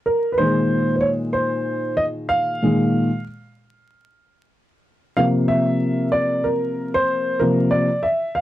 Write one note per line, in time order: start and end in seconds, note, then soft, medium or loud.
0.06 0.34 A#4 medium
0.32 0.39 B4 medium
0.38 2.61 A#2 medium
0.38 2.61 D#3 medium
0.38 2.62 G#3 medium
0.38 0.94 C5 medium
0.96 1.02 C5 medium
1.01 1.08 C#5 medium
1.33 1.94 C5 medium
1.97 2.04 D#5 medium
2.29 3.22 F5 loud
2.62 3.07 A#2 soft
2.62 3.08 D#3 soft
2.62 3.08 G#3 medium
5.17 7.40 C3 medium
5.17 7.40 F3 soft
5.17 7.41 A#3 medium
5.17 5.24 F5 loud
5.48 6.09 E5 medium
6.12 6.46 D5 medium
6.44 6.97 A#4 medium
6.94 7.42 C5 loud
7.39 7.86 C3 medium
7.39 7.86 F3 medium
7.39 7.86 A#3 medium
7.39 7.70 A#4 medium
7.71 8.05 D5 medium
8.03 8.37 E5 medium
8.35 8.41 F5 medium